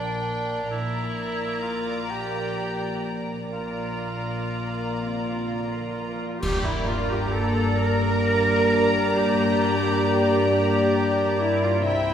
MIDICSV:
0, 0, Header, 1, 10, 480
1, 0, Start_track
1, 0, Tempo, 909091
1, 368, Time_signature, 6, 3, 24, 8
1, 855, Tempo, 960000
1, 3255, Tempo, 927357
1, 3735, Tempo, 899550
1, 6291, End_track
2, 0, Start_track
2, 0, Title_t, "Violin section"
2, 0, Program_c, 0, 48
2, 0, Note_on_c, 0, 79, 53
2, 348, Note_off_c, 0, 79, 0
2, 367, Note_on_c, 0, 82, 52
2, 1786, Note_off_c, 0, 82, 0
2, 1807, Note_on_c, 0, 82, 38
2, 3133, Note_off_c, 0, 82, 0
2, 3258, Note_on_c, 0, 82, 67
2, 6117, Note_off_c, 0, 82, 0
2, 6144, Note_on_c, 0, 79, 69
2, 6291, Note_off_c, 0, 79, 0
2, 6291, End_track
3, 0, Start_track
3, 0, Title_t, "Violin section"
3, 0, Program_c, 1, 48
3, 0, Note_on_c, 1, 74, 58
3, 342, Note_off_c, 1, 74, 0
3, 372, Note_on_c, 1, 74, 53
3, 1789, Note_off_c, 1, 74, 0
3, 1809, Note_on_c, 1, 74, 45
3, 3134, Note_off_c, 1, 74, 0
3, 3256, Note_on_c, 1, 74, 74
3, 6116, Note_off_c, 1, 74, 0
3, 6141, Note_on_c, 1, 76, 79
3, 6291, Note_off_c, 1, 76, 0
3, 6291, End_track
4, 0, Start_track
4, 0, Title_t, "Clarinet"
4, 0, Program_c, 2, 71
4, 2530, Note_on_c, 2, 65, 61
4, 3256, Note_on_c, 2, 67, 68
4, 3264, Note_off_c, 2, 65, 0
4, 3367, Note_off_c, 2, 67, 0
4, 3370, Note_on_c, 2, 64, 66
4, 3493, Note_on_c, 2, 65, 74
4, 3500, Note_off_c, 2, 64, 0
4, 3615, Note_on_c, 2, 67, 63
4, 3623, Note_off_c, 2, 65, 0
4, 3726, Note_on_c, 2, 69, 77
4, 3734, Note_off_c, 2, 67, 0
4, 3974, Note_on_c, 2, 70, 83
4, 3982, Note_off_c, 2, 69, 0
4, 4701, Note_off_c, 2, 70, 0
4, 4704, Note_on_c, 2, 67, 87
4, 5409, Note_off_c, 2, 67, 0
4, 5419, Note_on_c, 2, 67, 75
4, 5899, Note_on_c, 2, 64, 68
4, 5907, Note_off_c, 2, 67, 0
4, 6022, Note_on_c, 2, 65, 70
4, 6030, Note_off_c, 2, 64, 0
4, 6140, Note_off_c, 2, 65, 0
4, 6144, Note_on_c, 2, 64, 86
4, 6291, Note_off_c, 2, 64, 0
4, 6291, End_track
5, 0, Start_track
5, 0, Title_t, "Cello section"
5, 0, Program_c, 3, 48
5, 0, Note_on_c, 3, 46, 53
5, 345, Note_off_c, 3, 46, 0
5, 368, Note_on_c, 3, 46, 47
5, 2465, Note_off_c, 3, 46, 0
5, 2529, Note_on_c, 3, 48, 47
5, 2529, Note_on_c, 3, 65, 68
5, 2755, Note_off_c, 3, 48, 0
5, 2773, Note_on_c, 3, 50, 39
5, 3017, Note_off_c, 3, 50, 0
5, 3017, Note_on_c, 3, 53, 39
5, 3234, Note_off_c, 3, 65, 0
5, 3253, Note_on_c, 3, 67, 85
5, 3257, Note_off_c, 3, 53, 0
5, 3375, Note_off_c, 3, 67, 0
5, 3382, Note_on_c, 3, 64, 76
5, 3496, Note_on_c, 3, 65, 83
5, 3499, Note_off_c, 3, 64, 0
5, 3616, Note_off_c, 3, 65, 0
5, 3621, Note_on_c, 3, 67, 79
5, 3729, Note_on_c, 3, 69, 88
5, 3739, Note_off_c, 3, 67, 0
5, 3980, Note_off_c, 3, 69, 0
5, 3980, Note_on_c, 3, 70, 99
5, 4704, Note_off_c, 3, 70, 0
5, 4706, Note_on_c, 3, 67, 95
5, 5410, Note_off_c, 3, 67, 0
5, 5428, Note_on_c, 3, 67, 89
5, 5892, Note_off_c, 3, 67, 0
5, 5902, Note_on_c, 3, 64, 90
5, 6020, Note_off_c, 3, 64, 0
5, 6023, Note_on_c, 3, 65, 80
5, 6137, Note_on_c, 3, 64, 94
5, 6140, Note_off_c, 3, 65, 0
5, 6291, Note_off_c, 3, 64, 0
5, 6291, End_track
6, 0, Start_track
6, 0, Title_t, "Cor anglais"
6, 0, Program_c, 4, 69
6, 0, Note_on_c, 4, 62, 66
6, 365, Note_off_c, 4, 62, 0
6, 373, Note_on_c, 4, 64, 60
6, 857, Note_on_c, 4, 65, 51
6, 864, Note_off_c, 4, 64, 0
6, 1099, Note_on_c, 4, 67, 55
6, 1107, Note_off_c, 4, 65, 0
6, 1663, Note_off_c, 4, 67, 0
6, 1808, Note_on_c, 4, 65, 51
6, 2997, Note_off_c, 4, 65, 0
6, 6291, End_track
7, 0, Start_track
7, 0, Title_t, "Viola section"
7, 0, Program_c, 5, 48
7, 0, Note_on_c, 5, 58, 54
7, 364, Note_off_c, 5, 58, 0
7, 372, Note_on_c, 5, 58, 50
7, 1788, Note_off_c, 5, 58, 0
7, 1812, Note_on_c, 5, 58, 44
7, 3135, Note_off_c, 5, 58, 0
7, 3256, Note_on_c, 5, 58, 67
7, 6116, Note_off_c, 5, 58, 0
7, 6140, Note_on_c, 5, 60, 72
7, 6291, Note_off_c, 5, 60, 0
7, 6291, End_track
8, 0, Start_track
8, 0, Title_t, "French horn section"
8, 0, Program_c, 6, 60
8, 3258, Note_on_c, 6, 62, 70
8, 3260, Note_on_c, 6, 55, 70
8, 6118, Note_off_c, 6, 62, 0
8, 6119, Note_off_c, 6, 55, 0
8, 6143, Note_on_c, 6, 60, 68
8, 6146, Note_on_c, 6, 55, 68
8, 6291, Note_off_c, 6, 55, 0
8, 6291, Note_off_c, 6, 60, 0
8, 6291, End_track
9, 0, Start_track
9, 0, Title_t, "Double bass section"
9, 0, Program_c, 7, 48
9, 0, Note_on_c, 7, 34, 51
9, 344, Note_off_c, 7, 34, 0
9, 368, Note_on_c, 7, 34, 46
9, 3132, Note_off_c, 7, 34, 0
9, 3252, Note_on_c, 7, 43, 68
9, 6114, Note_off_c, 7, 43, 0
9, 6140, Note_on_c, 7, 36, 68
9, 6291, Note_off_c, 7, 36, 0
9, 6291, End_track
10, 0, Start_track
10, 0, Title_t, "Drums"
10, 3259, Note_on_c, 9, 35, 74
10, 3259, Note_on_c, 9, 49, 72
10, 3311, Note_off_c, 9, 35, 0
10, 3311, Note_off_c, 9, 49, 0
10, 6291, End_track
0, 0, End_of_file